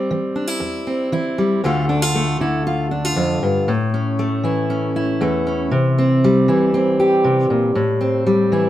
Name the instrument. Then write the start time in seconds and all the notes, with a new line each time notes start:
steel-string acoustic guitar
Already playing: G3 C4
0.11 E3
0.36 D4
0.47 E4
0.60 E2
0.87 C4
1.12 E3 E4
1.38 G3
1.64 D2 D3 A3 F4
1.89 D4
2.02 F4
2.15 A3
2.40 D3 E4
2.67 F4
2.91 D4
3.05 F4
3.16 F2
3.43 G2
3.68 A2
3.94 C#4
4.19 A3
4.43 E3 E4
4.70 C#4
4.96 E4
5.21 E2 A3
5.47 C#4
5.71 C3
5.98 C4
6.24 G3
6.48 E3 E4
6.74 C4
7.00 G4
7.24 C3
7.50 A#2
7.75 A2
8.01 C4
8.26 G3
8.52 E3 E4